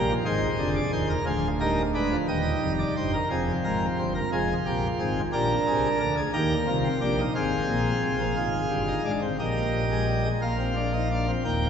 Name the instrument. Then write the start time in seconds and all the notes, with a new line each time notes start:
pipe organ
Already playing: A#1 A#2 G4 A#4
0.09 F3
0.25 G#1 G#2 D#3 G#4 C5
0.59 F1 F2 D3
0.76 D5
0.92 D#1 D#2 D#3 C5
1.10 A#4
1.26 D1 D2 F3 F4 G#4
1.60 G3 D#4 A#4
1.95 G#3 D4 B4
2.12 F3
2.28 D#1 D#2 G3 D#4 D#5
2.62 F1 F2
2.79 D5
2.96 G1 G2 C5
3.13 A#4
3.30 F1 F2 F3 C4 G#4
3.64 G#1 G#2 A#4
3.98 G1 G2 C5
4.15 A#4
4.32 F1 F2 G#3 F4 G#4
4.66 A#1 A#2 A#3 G4
4.99 G#1 G#2 C4 G#4
5.33 A#1 A#2 D4 G4 A#4
5.67 C2 C3 G#4
6.00 D2 D3 A#4
6.17 G#4
6.33 D#2 D#3 A#3 G4 A#4
6.67 C2 C3 F4
6.84 C4
7.01 A#1 A#2 D4 G4
7.18 D#4
7.35 G#1 G#2 C4 G#4 F5
7.68 A#1 A#2
8.02 C2 C3
8.19 A#1 A#2
8.37 G#1 G#2 F4
8.70 G1 G2
8.87 D#4
9.05 G#1 G#2 D4
9.22 C4
9.39 A#1 A#2 A#3 G4 D#5
9.91 G#3
10.08 G3
10.25 G#3
10.42 A#1 A#2 A#3 F4 F5
10.59 C4
10.76 D4
10.93 D#4
11.11 D4
11.28 C4
11.45 D#1 D#2 A#3 G5